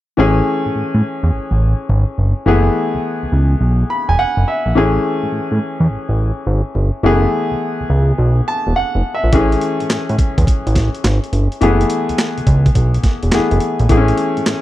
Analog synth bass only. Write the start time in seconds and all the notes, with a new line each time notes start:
0.18 A1
0.66 A2
0.75 A2
0.94 A2
1.23 E2
1.32 A1
1.51 A1
1.89 G#1
2.18 G1
2.46 F#1
2.94 C#2
3.23 C#2
3.32 C#2
3.61 B1
4.09 E1
4.18 F#1
4.37 F#1
4.66 A#1
4.75 A1
5.23 A2
5.32 A2
5.52 A2
5.80 E2
5.90 A1
6.09 A1
6.47 G#1
6.75 G1
7.03 F#1
7.51 C#2
7.80 C#2
7.90 C#2
8.18 B1
8.67 E1
8.76 F#1
8.95 F#1
9.24 A#1
9.33 A1
9.81 A2
9.90 A2
10.09 A2
10.38 E2
10.47 A1
10.67 A1
11.04 G#1
11.33 G1
11.62 F#1
12.09 C#2
12.38 C#2
12.47 C#2
12.76 B1
13.23 E1
13.33 F#1
13.51 F#1
13.80 A#1
13.89 A1
14.37 A2
14.47 A2